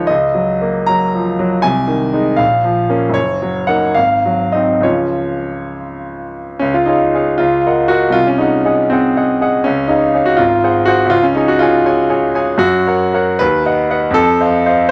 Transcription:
0.00 0.09 C#2 medium
0.00 0.11 D#3 soft
0.00 0.12 F3 soft
0.00 0.11 G#3 soft
0.00 0.11 C#5 medium
0.00 0.07 D#5 medium
0.00 0.11 F5 medium
0.07 1.61 C#2 medium
0.07 0.88 D#5 medium
0.34 0.79 F#3 soft
0.61 1.05 A#3 soft
0.86 1.30 F#3 soft
0.86 1.64 A#5 medium
1.15 1.40 F3 soft
1.39 1.64 F#3 medium
1.62 2.37 C2 medium
1.62 2.39 G#5 medium
1.88 2.29 D#3 soft
2.13 2.37 G#3 soft
2.13 2.37 D#4 medium
2.36 3.13 A#1 medium
2.36 3.14 F5 medium
2.64 3.05 F3 soft
2.89 3.13 A#3 soft
2.89 3.13 C#4 medium
3.09 3.90 F#1 medium
3.14 3.68 C#5 medium
3.42 3.85 F#3 soft
3.67 3.93 A#3 soft
3.67 3.94 D#4 soft
3.67 3.95 F#5 medium
3.95 4.82 G#1 soft
3.95 4.53 F5 medium
4.26 4.73 F#3 soft
4.52 4.82 C4 soft
4.52 4.82 D#4 soft
4.52 4.84 D#5 medium
4.80 6.56 C#2 soft
4.80 6.57 F3 soft
4.80 6.57 C#4 soft
4.80 6.58 F4 soft
4.80 5.75 C#5 medium
6.59 6.87 C#2 medium
6.59 6.74 C#4 medium
6.74 6.88 F4 medium
6.86 7.39 D#4 medium
6.86 7.11 G#4 soft
6.86 7.12 C#5 soft
6.86 7.12 F5 soft
7.15 7.38 G#4 soft
7.15 7.38 C#5 soft
7.15 7.38 F5 soft
7.38 7.64 C#2 medium
7.38 7.89 F4 medium
7.66 7.88 A#4 soft
7.66 7.88 D#5 soft
7.66 7.89 F#5 soft
7.88 8.14 F#4 medium
7.88 8.12 A#4 soft
7.88 8.13 D#5 soft
7.88 8.13 F#5 soft
8.10 8.37 C2 medium
8.10 8.26 F4 medium
8.27 8.40 C#4 medium
8.38 8.90 D#4 medium
8.38 8.63 G#4 soft
8.38 8.63 D#5 soft
8.38 8.64 F#5 soft
8.65 8.88 G#4 soft
8.65 8.88 D#5 soft
8.65 8.89 F#5 soft
8.90 9.66 C4 medium
8.90 9.14 G#4 soft
8.90 9.15 D#5 soft
8.90 9.15 F#5 soft
9.16 9.39 G#4 soft
9.16 9.39 D#5 soft
9.16 9.40 F#5 soft
9.41 9.64 G#4 soft
9.41 9.64 D#5 soft
9.41 9.64 F#5 soft
9.64 9.90 C#2 medium
9.64 9.90 C#4 medium
9.88 10.26 D#4 medium
9.88 10.13 G#4 soft
9.88 10.13 C#5 soft
9.88 10.13 F5 soft
10.14 10.37 G#4 soft
10.14 10.37 C#5 soft
10.14 10.38 F5 soft
10.26 10.39 F#4 medium
10.37 10.63 G#1 medium
10.37 10.87 F4 medium
10.64 10.86 G#4 soft
10.64 10.86 C5 soft
10.64 10.86 F#5 soft
10.86 11.12 F#4 medium
10.86 11.10 G#4 soft
10.86 11.10 C5 soft
10.86 11.10 F#5 medium
11.06 11.34 C#2 medium
11.06 11.24 F4 medium
11.23 11.37 C#4 medium
11.35 11.49 D#4 medium
11.35 11.59 G#4 soft
11.35 11.60 C#5 soft
11.35 11.60 G#5 soft
11.48 11.62 F#4 medium
11.59 12.59 F4 medium
11.59 11.84 G#4 soft
11.59 11.84 C#5 soft
11.59 11.84 G#5 medium
11.86 12.08 G#4 soft
11.86 12.08 C#5 soft
11.86 12.08 G#5 medium
12.10 12.32 G#4 soft
12.10 12.32 C#5 soft
12.10 12.33 G#5 soft
12.35 12.58 G#4 medium
12.35 12.58 C#5 soft
12.35 12.58 G#5 medium
12.58 12.85 F#2 medium
12.58 13.41 F#4 medium
12.87 13.12 A#4 soft
12.87 13.12 C#5 soft
12.87 13.12 F#5 soft
13.14 13.39 A#4 soft
13.14 13.39 C#5 soft
13.14 13.39 F#5 medium
13.39 13.66 D#2 medium
13.39 13.64 B4 loud
13.66 13.89 B4 soft
13.66 13.89 D#5 soft
13.66 13.89 F#5 medium
13.90 14.13 B4 medium
13.90 14.13 D#5 medium
13.90 14.13 F#5 medium
14.11 14.37 F2 medium
14.11 14.90 A4 loud
14.41 14.63 C5 soft
14.41 14.63 D#5 soft
14.41 14.64 F5 soft
14.66 14.87 C5 soft
14.66 14.89 D#5 medium
14.66 14.89 F5 medium

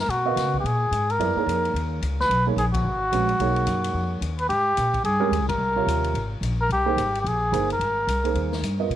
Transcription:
0.00 0.12 A#4 medium
0.08 0.35 B2 medium
0.08 0.59 F#4 medium
0.08 ride soft
0.25 0.62 B3 medium
0.25 0.62 A#4 soft
0.25 0.62 D#5 medium
0.25 0.62 F5 medium
0.36 0.63 C#3 medium
0.36 snare soft
0.36 hi-hat pedal soft
0.36 ride medium
0.54 kick soft
0.60 0.91 A#2 medium
0.60 0.68 G4 medium
0.66 1.13 G#4 medium
0.66 ride soft
0.91 1.18 G#2 medium
0.91 hi-hat pedal medium
0.91 ride soft
1.10 1.92 A#4 medium
1.10 ride soft
1.19 1.35 F#2 medium
1.19 1.35 B3 soft
1.19 1.35 E4 soft
1.19 1.35 A4 soft
1.19 1.35 D5 medium
1.19 ride soft
1.35 1.96 A#3 medium
1.35 1.96 D#4 soft
1.35 1.96 G#4 soft
1.35 1.96 C#5 soft
1.35 muted upright bass stroke soft
1.47 1.73 F2 medium
1.47 hi-hat pedal soft
1.47 ride medium
1.65 ride soft
1.74 2.01 D#2 medium
1.74 ride soft
2.01 2.28 C#2 medium
2.01 hi-hat pedal soft
2.01 ride medium
2.20 2.46 B4 medium
2.20 snare soft
2.29 2.56 B1 medium
2.29 ride soft
2.46 2.56 A#3 medium
2.46 2.56 D#4 soft
2.46 2.56 G#4 soft
2.46 2.57 C#5 medium
2.56 2.83 A#1 medium
2.56 2.66 G#4 medium
2.56 hi-hat pedal soft
2.56 ride soft
2.74 4.18 F#4 medium
2.74 kick medium
2.74 ride medium
2.84 3.11 G#1 medium
3.12 3.39 A#1 medium
3.12 3.27 G#3 medium
3.12 3.27 C#4 soft
3.12 3.27 F#4 soft
3.12 3.27 B4 medium
3.12 hi-hat pedal medium
3.12 ride medium
3.29 ride soft
3.39 3.66 B1 medium
3.39 4.16 A#3 medium
3.39 4.16 D#4 soft
3.39 4.16 G#4 soft
3.39 4.16 C#5 medium
3.39 ride medium
3.56 ride soft
3.67 3.93 F#2 medium
3.67 hi-hat pedal medium
3.67 ride medium
3.84 ride medium
3.94 4.21 F2 medium
4.21 4.48 D#2 medium
4.21 hi-hat pedal soft
4.21 ride medium
4.39 4.48 B4 medium
4.39 ride soft
4.49 4.76 G#2 medium
4.49 5.01 G4 medium
4.49 ride soft
4.77 5.03 A#2 medium
4.77 hi-hat pedal medium
4.77 ride medium
4.94 kick medium
4.94 ride soft
5.04 5.30 G2 medium
5.04 5.46 G#4 medium
5.04 ride soft
5.20 5.30 G#3 medium
5.20 5.31 C#4 medium
5.20 5.31 G4 medium
5.20 5.31 A#4 medium
5.31 5.40 D#2 medium
5.31 hi-hat pedal soft
5.31 ride medium
5.40 5.49 C2 soft
5.49 5.58 G#1 medium
5.49 6.28 A#4 medium
5.49 kick medium
5.49 ride medium
5.58 5.86 C2 medium
5.76 6.13 C3 medium
5.76 6.13 F4 medium
5.76 6.13 A#4 medium
5.76 6.13 C#5 medium
5.86 6.13 D#2 medium
5.86 hi-hat pedal medium
5.86 ride medium
6.04 ride soft
6.14 6.40 G#1 medium
6.14 ride soft
6.41 6.68 A#1 medium
6.41 hi-hat pedal soft
6.41 ride medium
6.61 6.70 A#4 medium
6.69 6.96 C2 medium
6.69 7.18 G4 medium
6.69 ride soft
6.86 6.96 A#3 medium
6.86 6.96 D#4 medium
6.86 6.96 G#4 medium
6.86 6.96 C5 medium
6.97 7.24 G#1 medium
6.97 hi-hat pedal medium
6.97 ride medium
7.15 ride soft
7.21 7.51 A#1 medium
7.21 7.29 G4 medium
7.26 7.71 G#4 medium
7.26 ride soft
7.52 7.79 G1 medium
7.52 7.68 A#3 medium
7.52 7.68 D#4 soft
7.52 7.68 G#4 soft
7.52 7.68 C5 medium
7.52 hi-hat pedal soft
7.52 ride medium
7.70 8.50 A#4 medium
7.70 ride soft
7.79 8.07 G#1 medium
7.79 ride soft
8.07 8.34 C2 medium
8.07 hi-hat pedal medium
8.07 ride medium
8.24 8.60 A#3 medium
8.24 8.61 D#4 soft
8.24 8.61 G#4 soft
8.24 8.61 C5 soft
8.24 ride soft
8.35 8.61 D#2 medium
8.35 ride soft
8.52 snare soft
8.62 8.89 G2 medium
8.62 hi-hat pedal medium
8.62 ride medium
8.79 8.89 B3 soft
8.79 8.89 F4 soft
8.79 8.89 A#4 soft
8.79 8.89 D#5 medium
8.90 8.96 B2 medium
8.90 ride soft

